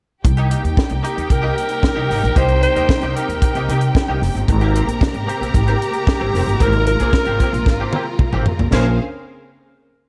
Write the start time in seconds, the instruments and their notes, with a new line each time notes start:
0.24 upright bass C2, string section C3 G3 A#3 D#4 G4 G5, muted clean electric guitar stroke, kick, closed hi-hat
0.37 clean electric guitar A#3 D#4 G4, closed hi-hat
0.50 clean electric guitar A#3 D#4 G4, closed hi-hat
0.63 upright bass D#2, muted clean electric guitar stroke, closed hi-hat
0.77 muted clean electric guitar stroke, kick, snare
0.89 upright bass C2, muted clean electric guitar stroke, closed hi-hat
1.03 clean electric guitar A#3 D#4 G4, alto saxophone G4, closed hi-hat
1.16 upright bass D#2, clean electric guitar A#3 D#4 G4, closed hi-hat
1.29 upright bass C2, alto saxophone A#4, muted clean electric guitar stroke, kick, closed hi-hat
1.42 clean electric guitar A#3 D#4 G4
1.56 muted clean electric guitar stroke, closed hi-hat
1.69 muted clean electric guitar stroke, closed hi-hat
1.82 muted clean electric guitar stroke, kick, snare
1.96 upright bass C2, clean electric guitar A#3 D#4 G4
2.09 upright bass G#1, clean electric guitar A#3 D#4 G4, snare, open hi-hat
2.23 upright bass A#1, muted clean electric guitar stroke, closed hi-hat
2.35 upright bass C2, clean electric guitar A#3 D#4 G4, string section C4, alto saxophone C5, kick, closed hi-hat
2.48 muted clean electric guitar stroke, closed hi-hat
2.62 alto saxophone C5, muted clean electric guitar stroke, closed hi-hat
2.75 upright bass D#2, clean electric guitar A#3 D#4 A#4, closed hi-hat
2.89 kick, snare
3.01 upright bass C2, clean electric guitar A#3 D#4 G4, closed hi-hat
3.15 clean electric guitar A#3 D#4 G4, alto saxophone A#4, closed hi-hat
3.29 upright bass D#2, muted clean electric guitar stroke, closed hi-hat
3.41 muted clean electric guitar stroke, kick, closed hi-hat
3.55 upright bass C2, clean electric guitar A#3 D#4 G4, closed hi-hat
3.68 upright bass C3, clean electric guitar A#3 D#4 G4, closed hi-hat
3.81 muted clean electric guitar stroke, closed hi-hat
3.95 muted clean electric guitar stroke, kick, snare
4.08 upright bass C2, clean electric guitar A#3 D#4 G4
4.21 upright bass F1, muted clean electric guitar stroke, snare, open hi-hat
4.35 upright bass G1, muted clean electric guitar stroke, closed hi-hat
4.48 upright bass G#1, string section G#3 A#3 G4 A#4 A#5, muted clean electric guitar stroke, kick, closed hi-hat
4.61 clean electric guitar A#3 C4 G4, closed hi-hat
4.74 clean electric guitar A#3 C4 G4, closed hi-hat
4.87 upright bass A#1, muted clean electric guitar stroke, closed hi-hat
5.01 muted clean electric guitar stroke, kick, snare
5.14 upright bass G#1, muted clean electric guitar stroke, closed hi-hat
5.27 clean electric guitar A#3 C4 G4, alto saxophone G4, closed hi-hat
5.40 upright bass A#1, clean electric guitar A#3 C4 G4, closed hi-hat
5.54 upright bass G#1, muted clean electric guitar stroke, kick, closed hi-hat
5.67 clean electric guitar A#3 C4 G4, closed hi-hat
5.80 muted clean electric guitar stroke, closed hi-hat
5.93 muted clean electric guitar stroke, closed hi-hat
6.07 muted clean electric guitar stroke, kick, snare
6.20 upright bass G#1, clean electric guitar A#3 C4 G4
6.33 upright bass F1, clean electric guitar A#3 C4 G4, snare, open hi-hat
6.47 upright bass G1, closed hi-hat
6.60 upright bass G#1, clean electric guitar A#3 C4 G4, string section F4, alto saxophone A#4, kick, closed hi-hat
6.73 muted clean electric guitar stroke, closed hi-hat
6.86 alto saxophone A#4, muted clean electric guitar stroke, closed hi-hat
7.00 upright bass A#1, clean electric guitar A#3 C4 G#4, closed hi-hat
7.13 muted clean electric guitar stroke, kick, snare
7.25 upright bass G#1, clean electric guitar A#3 C4 G4, closed hi-hat
7.40 clean electric guitar A#3 C4 G4, kick, closed hi-hat
7.53 upright bass A#1, closed hi-hat
7.66 upright bass G#1, muted clean electric guitar stroke, kick, snare
7.80 clean electric guitar A#3 C4 G4
7.93 clean electric guitar A#3 C4 G4, high tom
8.06 muted clean electric guitar stroke
8.19 muted clean electric guitar stroke, kick, mid tom
8.33 upright bass G#1, clean electric guitar A#3 C4 G4, mid tom
8.46 muted clean electric guitar stroke, floor tom
8.59 upright bass A#1, muted clean electric guitar stroke, floor tom
8.72 upright bass A#1, string section C#3 A#3 C4 C#4 G#4 C5 F5, clean electric guitar C#4 G#4 C5, alto saxophone A#4, kick, snare, crash